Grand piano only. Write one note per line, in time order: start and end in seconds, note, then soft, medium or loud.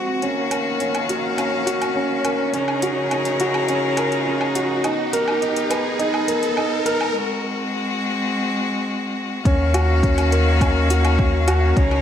0.00 0.25 C4 medium
0.00 0.24 F#4 medium
0.00 0.25 G#4 medium
0.22 0.50 C#4 medium
0.51 0.79 A#4 medium
0.80 1.08 C#4 medium
1.09 1.37 F#4 medium
1.38 1.55 C#4 medium
1.66 1.94 F#4 medium
1.96 2.23 C#4 medium
2.25 2.52 A#4 medium
2.54 2.81 C#4 medium
2.83 3.10 F#4 medium
3.12 3.28 C#4 medium
3.41 3.68 F#4 medium
3.70 3.97 C#4 medium
3.98 4.25 A#4 medium
4.26 4.54 C#4 medium
4.55 4.83 F#4 medium
4.84 5.01 D#4 medium
5.13 5.40 A#4 loud
5.42 5.69 D#4 medium
5.70 5.98 B4 medium
5.99 6.27 D#4 medium
6.28 6.56 A#4 medium
6.57 6.73 D#4 medium
6.86 7.13 A#4 loud
9.46 9.62 C#4 medium
9.74 10.02 F#4 medium
10.03 10.31 C#4 medium
10.32 10.60 A#4 medium
10.61 10.88 C#4 medium
10.90 11.17 F#4 medium
11.19 11.35 C#4 medium
11.48 11.75 F#4 loud
11.77 12.02 C#4 medium